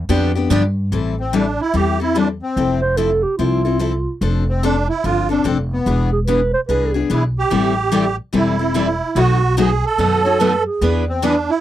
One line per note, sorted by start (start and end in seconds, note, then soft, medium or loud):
0.09 0.49 F2 medium
0.09 0.31 D3 medium
0.09 0.31 F3 medium
0.09 0.31 B3 medium
0.09 0.31 D4 medium
0.09 0.31 G4 medium
0.35 0.50 B3 soft
0.35 0.50 D4 medium
0.35 0.50 G4 medium
0.50 0.90 G2 medium
0.50 0.62 D3 medium
0.50 0.62 F3 medium
0.50 0.62 B3 loud
0.50 0.62 D4 medium
0.50 0.63 G4 loud
0.92 1.58 A1 medium
0.92 1.13 E3 medium
0.92 1.14 G3 medium
0.92 1.14 C4 medium
0.92 1.14 E4 medium
0.92 1.14 A4 medium
1.20 1.35 C4 medium
1.33 1.44 E3 medium
1.33 1.44 G3 medium
1.33 1.45 C4 medium
1.33 1.61 D4 medium
1.33 1.45 E4 medium
1.33 1.45 A4 medium
1.61 1.76 E4 medium
1.74 2.40 E2 medium
1.74 1.95 E3 medium
1.74 1.96 G3 medium
1.74 1.96 C4 medium
1.74 1.96 E4 medium
1.74 1.99 G4 medium
1.74 1.96 A4 medium
2.00 2.15 C4 soft
2.00 2.15 E4 soft
2.00 2.17 E4 medium
2.00 2.15 A4 soft
2.15 2.27 E3 medium
2.15 2.27 G3 medium
2.15 2.27 C4 medium
2.15 2.28 D4 medium
2.15 2.27 E4 medium
2.15 2.27 A4 medium
2.42 2.80 C4 medium
2.56 3.23 F1 medium
2.56 2.78 F3 medium
2.56 2.79 C4 medium
2.56 2.79 E4 medium
2.56 2.79 A4 medium
2.81 2.98 C5 medium
2.97 3.09 F3 medium
2.97 3.09 C4 medium
2.97 3.09 E4 medium
2.97 3.24 A4 loud
2.97 3.10 A4 medium
3.23 3.37 G4 medium
3.38 4.05 C2 medium
3.38 3.61 F3 medium
3.38 3.61 C4 medium
3.38 3.61 E4 medium
3.38 4.17 F4 medium
3.38 3.61 A4 medium
3.65 3.79 C4 soft
3.65 3.79 E4 soft
3.65 3.80 A4 medium
3.79 3.91 F3 medium
3.79 3.92 C4 medium
3.79 3.92 E4 medium
3.79 3.92 A4 medium
4.21 4.87 F1 medium
4.21 4.43 F3 medium
4.21 4.43 C4 medium
4.21 4.43 D4 medium
4.21 4.44 A4 medium
4.49 4.64 C4 medium
4.63 4.75 F3 medium
4.63 4.75 C4 medium
4.63 4.75 D4 medium
4.63 4.88 D4 medium
4.63 4.75 A4 medium
4.89 5.05 E4 medium
5.04 5.39 G1 medium
5.04 5.26 F3 medium
5.04 5.26 C4 medium
5.04 5.26 D4 medium
5.04 5.29 F4 medium
5.04 5.26 A4 medium
5.29 5.44 C4 soft
5.29 5.44 D4 soft
5.29 5.46 D4 medium
5.29 5.44 A4 medium
5.44 5.80 F1 medium
5.44 5.56 F3 medium
5.44 5.57 C4 medium
5.44 5.58 C4 medium
5.44 5.57 D4 medium
5.44 5.57 A4 medium
5.73 6.11 B3 medium
5.86 6.52 E1 medium
5.86 6.08 E3 medium
5.86 6.08 B3 medium
5.86 6.09 D4 medium
5.86 6.09 G#4 medium
6.12 6.19 G#4 medium
6.27 6.39 E3 medium
6.27 6.39 B3 medium
6.27 6.39 D4 medium
6.27 6.40 G#4 medium
6.27 6.52 B4 medium
6.54 6.61 C5 medium
6.68 7.04 C2 medium
6.68 6.91 E3 medium
6.68 6.91 B3 medium
6.68 6.91 D4 medium
6.68 6.91 G#4 medium
6.68 7.00 B4 medium
6.94 7.09 B3 soft
6.94 7.09 D4 soft
6.94 7.09 G#4 soft
7.10 7.45 B1 medium
7.10 7.21 E3 medium
7.10 7.22 B3 medium
7.10 7.22 D4 medium
7.10 7.24 E4 medium
7.10 7.22 G#4 medium
7.39 8.16 G4 medium
7.50 8.17 A1 medium
7.50 7.73 E3 medium
7.50 7.73 G3 medium
7.50 7.73 C4 medium
7.50 7.73 E4 medium
7.50 7.73 A4 medium
7.92 8.04 E3 medium
7.92 8.04 G3 medium
7.92 8.04 C4 medium
7.92 8.04 E4 medium
7.92 8.04 A4 medium
8.33 9.00 E1 medium
8.33 8.55 E3 medium
8.33 8.55 G3 medium
8.33 8.55 C4 medium
8.33 8.55 E4 medium
8.33 8.56 A4 medium
8.37 9.20 E4 medium
8.59 8.73 C4 soft
8.59 8.74 E4 soft
8.59 8.74 A4 medium
8.74 8.86 E3 medium
8.74 8.86 G3 medium
8.74 8.86 C4 medium
8.74 8.86 E4 medium
8.74 8.87 A4 medium
9.15 9.82 B1 medium
9.15 9.38 B2 medium
9.15 9.38 D#3 medium
9.15 9.38 F#3 medium
9.15 9.38 A3 medium
9.15 9.38 B3 medium
9.15 9.38 D#4 medium
9.15 9.38 F#4 medium
9.15 9.55 F#4 loud
9.15 9.38 A4 medium
9.57 9.69 B2 medium
9.57 9.69 D#3 medium
9.57 9.69 F#3 medium
9.57 9.69 A3 medium
9.57 9.69 B3 medium
9.57 9.69 D#4 medium
9.57 9.69 F#4 medium
9.57 9.85 G#4 medium
9.57 9.70 A4 medium
9.86 10.63 A4 medium
9.98 10.64 F#2 medium
9.98 10.20 B2 medium
9.98 10.21 D#3 medium
9.98 10.20 F#3 medium
9.98 10.20 A3 medium
9.98 10.21 B3 medium
9.98 10.21 D#4 medium
9.98 10.21 F#4 medium
9.98 10.21 A4 medium
10.23 10.39 A3 soft
10.23 10.39 D#4 medium
10.23 10.39 F#4 soft
10.23 10.38 C#5 loud
10.40 10.51 B2 medium
10.40 10.52 D#3 medium
10.40 10.51 F#3 medium
10.40 10.52 A3 medium
10.40 10.52 B3 medium
10.40 10.52 D#4 medium
10.40 10.52 F#4 medium
10.40 10.52 A4 medium
10.40 10.64 B4 medium
10.66 10.92 G#4 medium
10.81 11.47 E2 medium
10.81 11.03 E3 medium
10.81 11.03 B3 medium
10.81 11.03 D4 medium
10.81 11.03 G#4 medium
10.81 11.04 B4 medium
11.09 11.24 C4 medium
11.23 11.34 E3 medium
11.23 11.34 B3 medium
11.23 11.34 D4 medium
11.23 11.50 D4 medium
11.23 11.35 G#4 medium
11.23 11.34 B4 medium
11.50 11.61 E4 medium